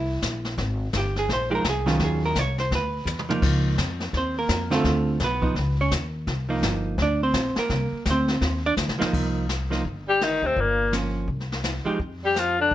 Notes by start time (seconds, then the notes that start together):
Already playing: C2 E4
0.22 A#1, kick, snare, hi-hat pedal
0.45 snare
0.58 G#1, brush sweep, kick, snare
0.93 G1, kick, snare, hi-hat pedal
0.97 G4
1.16 G#4, snare
1.29 A#1, brush sweep, kick, snare
1.33 C5
1.50 F3 G#3 D#4 G4
1.55 A#4
1.64 C2, kick, snare, hi-hat pedal
1.69 G#4
1.86 D#3 F#3 C#4 F4, snare
1.99 D#2, brush sweep, kick, snare
2.04 G#4
2.26 A#4
2.35 C2 C#5, kick, snare, hi-hat pedal
2.58 C5, snare
2.71 D2 B4, brush sweep, kick, snare
3.06 E2, hi-hat pedal, high tom
3.19 mid tom
3.29 F3 A#3 D#4, mid tom
3.42 C#2, brush sweep, kick, snare, crash
3.78 F2, kick, snare, hi-hat pedal
4.00 snare
4.13 D#2 C5, brush sweep, kick, snare
4.18 C4
4.39 A#3 A#4
4.49 F2, kick, snare, hi-hat pedal
4.70 D3 A3 C4 F4, snare
4.74 A4
4.84 D2, brush sweep, kick, snare
5.20 B1, kick, snare, hi-hat pedal
5.24 B3 B4
5.42 F3 B3 D#4, kick
5.55 C#2, brush sweep, kick, snare
5.81 C#4 C#5
5.91 D#2, kick, snare, hi-hat pedal
6.27 C2, brush sweep, kick, snare
6.49 F3 A#3 D#4
6.62 G1, kick, snare, hi-hat pedal
6.98 D2, brush sweep, kick, snare
7.02 D4 D5
7.23 C4 C5
7.34 A#1, kick, snare, hi-hat pedal
7.56 A#3 A#4, muted upright bass stroke, snare
7.70 C2, brush sweep, kick, snare
7.92 muted upright bass stroke
8.05 D2, kick, snare, hi-hat pedal
8.10 C4 C5
8.28 snare
8.41 D#2, brush sweep, kick, snare
8.66 D4 D5
8.77 D2, snare, hi-hat pedal
8.88 C2, snare
8.99 A#1 F3 A#3 D#4, snare
9.13 C2, brush sweep, kick, crash
9.49 snare, hi-hat pedal
9.70 F3 A#3 D#4, snare
9.85 G1, brush sweep, kick
10.08 G3 G4
10.21 D#3 D#4, snare, hi-hat pedal
10.42 D2 C3 C4
10.57 G1 A#2 A#3, brush sweep, kick
10.92 F3 A#3 C#4, snare, hi-hat pedal
11.28 C2, brush sweep, kick
11.40 snare
11.52 snare
11.64 snare, hi-hat pedal
11.85 F3 G#3 D#4 G4, muted upright bass stroke
11.99 F2, brush sweep, kick
12.24 G3 G4
12.36 F3 F4, snare, hi-hat pedal
12.59 D3 D4
12.71 C2, brush sweep, kick